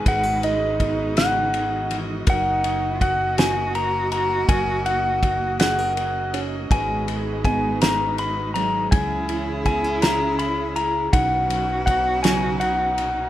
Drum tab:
RD |xxxxxx|xxxxxx|xxxxxx|xxxxxx|
SD |---o--|---o--|---o--|---o--|
BD |o-o---|o-o---|o-o---|o-o---|

RD |xxxxxx|xxxxxx|
SD |---o--|---o--|
BD |o-o---|o-o---|